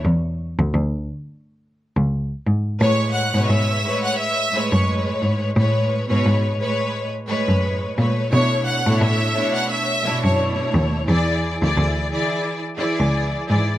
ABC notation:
X:1
M:4/4
L:1/16
Q:"Swing 16ths" 1/4=87
K:A
V:1 name="Violin section"
z16 | [cc']2 [ff']2 [ee']3 [ff'] [ee']3 [cc'] z4 | z16 | [cc']2 [ff']2 [ee']3 [ff'] [ee']3 [cc'] z4 |
z16 |]
V:2 name="String section"
z16 | [A,,G,Bc]3 [B,,G,Bc]3 [A,,G,Bc]3 z [A,,G,Bc]6 | [A,,G,Bc]3 [B,,G,Bc]3 [A,,G,Bc]3 z [A,,G,Bc]4 [G,A,Bc]2 | [B,,A,DEc]3 [B,,A,DEc]3 [B,,A,DEc]3 z [B,,A,DEc]6 |
[E,EGd]3 [E,EGd]3 [E,EGd]3 z [E,EGd]4 [E,EGd]2 |]
V:3 name="Cello" clef=bass
E,,3 D,, D,,2 z4 z C,, z2 G,,2 | A,,3 G,, G,,2 z4 z F,, z2 G,,2 | A,,3 G,, G,,2 z4 z F,, z2 _B,,2 | B,,3 A,, A,,2 z4 z F,, z2 ^D,,2 |
E,,3 D,, D,,2 z4 z C,, z2 G,,2 |]